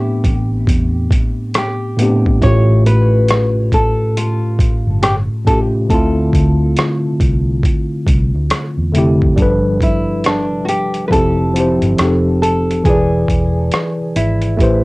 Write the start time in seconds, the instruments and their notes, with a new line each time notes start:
Already playing: tine electric piano A2 A3 B3 C4 D4 G4, nylon-string guitar G4
0.24 fingered electric bass A1, kick, closed hi-hat
0.67 fingered electric bass E2, kick, closed hi-hat
1.11 kick, closed hi-hat
1.54 nylon-string guitar G4, cross-stick, closed hi-hat
1.97 tine electric piano A2 A3 B3 C4, closed hi-hat
2.02 tine electric piano D4 G4
2.26 kick
2.40 fingered electric bass A1, tine electric piano A2 A3 C#4, nylon-string guitar C#5, kick, closed hi-hat
2.45 tine electric piano F4 G4
2.86 nylon-string guitar B4, closed hi-hat
3.28 cross-stick, closed hi-hat
3.72 nylon-string guitar A4, kick, closed hi-hat
4.17 nylon-string guitar F4, closed hi-hat
4.59 kick, closed hi-hat
4.87 fingered electric bass G1
5.02 nylon-string guitar G4, cross-stick, closed hi-hat
5.45 tine electric piano A2 A3 C#4, nylon-string guitar A4, kick, closed hi-hat
5.49 tine electric piano F4 G4
5.89 fingered electric bass D2, tine electric piano D3 A3 C4, nylon-string guitar A4, kick, closed hi-hat
5.93 tine electric piano E4 F4
6.33 fingered electric bass D2, kick, closed hi-hat
6.77 cross-stick, closed hi-hat
7.20 fingered electric bass C2, kick, closed hi-hat
7.63 kick, closed hi-hat
8.07 fingered electric bass C2, kick, closed hi-hat
8.35 fingered electric bass D2
8.50 cross-stick, closed hi-hat
8.78 fingered electric bass E2
8.92 fingered electric bass F1, tine electric piano D3 A3 C4, closed hi-hat
8.97 tine electric piano E4 G4
9.22 kick
9.36 fingered electric bass G1, tine electric piano F3 G3 D4, kick, closed hi-hat
9.40 tine electric piano A4 B4
9.81 nylon-string guitar E4, kick, closed hi-hat
10.24 nylon-string guitar D4, cross-stick, closed hi-hat
10.65 nylon-string guitar F#4 G4, closed hi-hat
10.94 closed hi-hat
11.08 fingered electric bass F1, tine electric piano F3 C4, nylon-string guitar B4, kick
11.12 tine electric piano E4 G4 A4, nylon-string guitar A4, closed hi-hat
11.54 tine electric piano F3 C4 E4, closed hi-hat
11.59 tine electric piano G4 C5
11.82 fingered electric bass G1, closed hi-hat
11.97 fingered electric bass F1, tine electric piano F3 C4 D#4, cross-stick, closed hi-hat
12.02 tine electric piano G4 A4
12.42 nylon-string guitar A4, closed hi-hat
12.71 closed hi-hat
12.84 fingered electric bass E1, tine electric piano E3 E4 F4, nylon-string guitar G#4, kick, closed hi-hat
12.88 tine electric piano B4 D5
12.93 tine electric piano G#4
13.28 fingered electric bass E1, kick, closed hi-hat
13.72 cross-stick, closed hi-hat
14.16 fingered electric bass G#1, nylon-string guitar E4, closed hi-hat
14.42 closed hi-hat
14.57 fingered electric bass A1, tine electric piano A3 E4 G4, kick, closed hi-hat
14.62 tine electric piano B4 C5